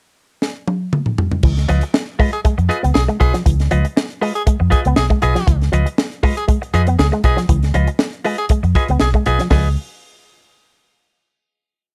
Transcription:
0.42 snare
0.68 high tom
0.93 mid tom
1.06 mid tom
1.18 floor tom
1.31 floor tom
1.43 C#2 E3, kick, crash
1.57 snare, closed hi-hat
1.68 C#2 F3 F4 B4 D#5, closed hi-hat
1.81 muted clean electric guitar stroke, closed hi-hat
1.94 muted clean electric guitar stroke, snare
2.19 G#3 F4 B4 D#5, kick, open hi-hat
2.32 G#4, muted clean electric guitar stroke, closed hi-hat
2.45 G#3, muted clean electric guitar stroke, muted fingered electric bass stroke, kick, closed hi-hat
2.58 F2, muted clean electric guitar stroke, closed hi-hat
2.69 F4 G#4 B4 D#5, closed hi-hat
2.83 C#2 B3, muted clean electric guitar stroke, closed hi-hat
2.94 B1 G#4, muted clean electric guitar stroke, snare
3.08 G#3, muted clean electric guitar stroke, closed hi-hat
3.20 B1 F4 G#4 B4 D#5, muted clean electric guitar stroke, kick, closed hi-hat
3.34 F3, muted clean electric guitar stroke, snare, closed hi-hat
3.46 C#2 E3, kick, closed hi-hat
3.60 snare, closed hi-hat
3.71 C#2 F3 F4 B4 D#5, closed hi-hat
3.85 muted clean electric guitar stroke, closed hi-hat
3.97 muted clean electric guitar stroke, snare
4.10 closed hi-hat
4.21 G#3 F4 B4 D#5, open hi-hat
4.34 G#4, muted clean electric guitar stroke, closed hi-hat
4.46 G#3, muted clean electric guitar stroke, muted fingered electric bass stroke, kick, closed hi-hat
4.60 F2, muted clean electric guitar stroke
4.70 F4 G#4 B4 D#5, kick, closed hi-hat
4.84 C#2 B3, muted clean electric guitar stroke, closed hi-hat
4.96 B1 G#4, muted clean electric guitar stroke, snare
5.10 G#3, muted clean electric guitar stroke, kick, closed hi-hat
5.22 B1 F4 G#4 B4 D#5, muted clean electric guitar stroke, closed hi-hat
5.35 F3, muted clean electric guitar stroke, snare, closed hi-hat
5.47 C#2 E3, kick, closed hi-hat
5.61 snare, closed hi-hat
5.72 C#2 F3 F4 B4 D#5, closed hi-hat
5.86 muted clean electric guitar stroke, closed hi-hat
5.98 muted clean electric guitar stroke, snare
6.12 closed hi-hat
6.23 G#3 F4 B4 D#5, kick, open hi-hat
6.37 G#4, closed hi-hat
6.48 G#3, muted clean electric guitar stroke, kick, closed hi-hat
6.62 muted clean electric guitar stroke, closed hi-hat
6.74 F2 F4 G#4 B4 D#5, closed hi-hat
6.87 B3, muted clean electric guitar stroke, closed hi-hat
6.99 C#2 G#4, muted clean electric guitar stroke, snare
7.12 G#3, muted clean electric guitar stroke, closed hi-hat
7.24 B1 F4 G#4 B4 D#5, muted clean electric guitar stroke, kick, closed hi-hat
7.37 F3, snare, closed hi-hat
7.49 C#2 E3, kick, closed hi-hat
7.63 snare, closed hi-hat
7.74 C#2 F3 F4 B4 D#5, closed hi-hat
7.87 muted clean electric guitar stroke, closed hi-hat
7.99 muted clean electric guitar stroke, snare
8.13 closed hi-hat
8.24 G#3 F4 B4 D#5, open hi-hat
8.38 G#4, muted clean electric guitar stroke, closed hi-hat
8.49 G#3, muted fingered electric bass stroke, muted clean electric guitar stroke, kick, closed hi-hat
8.63 F2, muted clean electric guitar stroke, closed hi-hat
8.75 F4 G#4 B4 D#5, kick, closed hi-hat
8.88 C#2 B3, muted clean electric guitar stroke, closed hi-hat
9.00 B1 G#4, muted clean electric guitar stroke, snare
9.14 G#3, muted clean electric guitar stroke, kick, closed hi-hat
9.26 B1 F4 G#4 B4 D#5, muted clean electric guitar stroke, closed hi-hat
9.39 F3, snare, closed hi-hat
9.50 C#2 F3 F4 G#4 B4 D#5, kick, snare, open hi-hat

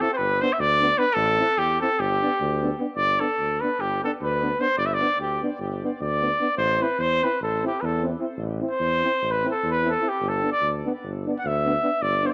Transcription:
0.00 C4 E4 A4
0.14 B4 C5
0.18 G1
0.41 B3 D4 C5
0.53 E5
0.59 D2 D5
0.81 B3 D4
0.98 B3 D4 B4
1.14 A1 A4
1.39 C4 E4
1.57 E2 G4
1.81 C4 E4 A4
1.98 G1 G4
2.22 B3 D4
2.40 D2
2.62 B3 D4
2.79 B3 D4
2.95 G1 D5
3.20 B3 D4 A4
3.39 D2
3.61 B3 D4 B4
3.79 G1 G4
4.02 B3 D4 A4
4.21 D2 B4
4.41 B3 D4
4.59 B3 D4 C5
4.77 G1 D5
4.86 E5
4.94 D5
5.00 B3 D4
5.18 D2 G4
5.41 B3 D4
5.59 G1
5.83 B3 D4
6.00 D2 D5
6.21 B3 D4
6.40 B3 D4
6.57 A1 C5
6.79 C4 E4 B4
6.98 E2 C5
7.21 C4 E4 B4
7.41 A1 A4
7.63 C4 E4
7.67 G4
7.81 E2 B4
7.85 A4
8.02 C4 E4
8.19 C4 E4
8.37 A1
8.61 C4 E4
8.71 C5
8.80 E2
9.03 C4 E4
9.22 A1
9.31 B4
9.44 C4 E4 B4
9.51 A4
9.63 E2
9.71 B4
9.84 C4 E4
9.90 A4
10.01 C4 E4
10.08 G4
10.21 G1
10.28 A4
10.43 B3 D4
10.52 D5
10.61 D2
10.84 B3 D4
11.03 G1
11.26 B3 D4
11.39 F#5
11.45 D2 E5
11.65 B3 D4
11.82 B3 D4
12.01 G1 D5
12.23 B3 D4 C5
12.30 D5

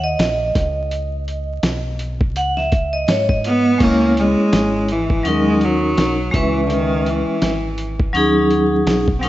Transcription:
Already playing: D#2
0.04 D#5
0.19 A#1, snare, closed hi-hat
0.55 C#2, kick, snare, closed hi-hat
0.91 closed hi-hat
1.28 closed hi-hat
1.63 B1, snare, closed hi-hat
1.99 closed hi-hat
2.21 kick
2.35 C#2 F#5, closed hi-hat
2.57 E5, snare
2.72 kick, closed hi-hat
2.93 D#5
3.08 G#2 C#5, snare, closed hi-hat
3.29 D#5, kick
3.44 B3, closed hi-hat
3.78 C#2 G#3 C#4 E4, kick, closed hi-hat, crash
3.82 A#3 C#5
4.17 G#3, closed hi-hat
4.53 G#1, snare, closed hi-hat
4.88 E3, closed hi-hat
5.10 kick
5.23 D#2 F#3 C#4 D#4 A#4, closed hi-hat
5.28 G#3
5.61 F#3, closed hi-hat
5.97 B1, snare, closed hi-hat
6.30 C#2 F#3 G#3 C#4 E5, kick, closed hi-hat
6.34 E3 B4, snare
6.66 D3, closed hi-hat
6.73 D#3
7.06 E3, closed hi-hat
7.42 G#1, snare, closed hi-hat
7.78 closed hi-hat
7.99 kick
8.13 D#2 F#3 C#4 D#4 G#4, closed hi-hat
8.50 closed hi-hat
8.86 B1, snare, closed hi-hat
9.08 kick
9.19 F#3 C4 C#4, closed hi-hat
9.24 C#4 D#4 A#4

